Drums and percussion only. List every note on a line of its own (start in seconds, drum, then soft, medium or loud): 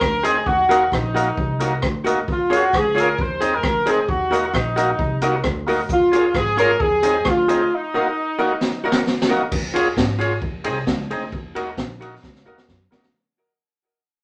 0.01 kick loud
0.01 cross-stick loud
0.24 closed hi-hat medium
0.46 kick loud
0.71 closed hi-hat medium
0.92 kick loud
0.92 cross-stick loud
1.16 closed hi-hat medium
1.37 kick loud
1.60 closed hi-hat loud
1.82 kick loud
1.82 cross-stick loud
2.06 closed hi-hat medium
2.28 kick loud
2.53 closed hi-hat medium
2.73 kick loud
2.73 cross-stick loud
2.98 closed hi-hat medium
3.18 kick loud
3.41 closed hi-hat loud
3.63 kick loud
3.63 cross-stick loud
3.87 closed hi-hat medium
4.09 kick loud
4.33 closed hi-hat medium
4.54 kick loud
4.54 cross-stick loud
4.77 closed hi-hat medium
4.99 kick loud
5.22 closed hi-hat loud
5.44 kick loud
5.44 cross-stick loud
5.67 open hi-hat medium
5.89 kick loud
5.89 hi-hat pedal medium
6.13 closed hi-hat medium
6.34 kick loud
6.34 cross-stick loud
6.58 closed hi-hat medium
6.80 kick loud
7.03 closed hi-hat loud
7.25 kick loud
7.25 cross-stick loud
7.49 closed hi-hat medium
8.61 snare medium
8.92 snare medium
9.07 snare medium
9.22 snare loud
9.52 kick loud
9.52 crash loud
9.76 ride medium
9.97 kick loud
9.97 snare loud
10.21 ride medium
10.42 kick loud
10.64 ride loud
10.87 kick loud
10.87 snare loud
11.11 ride medium
11.32 kick loud
11.56 ride medium
11.78 kick loud
11.78 snare loud
12.02 ride medium
12.23 kick loud
12.23 snare medium
12.35 snare medium
12.58 snare medium
12.68 kick loud
12.68 snare medium
12.92 snare loud
13.03 snare loud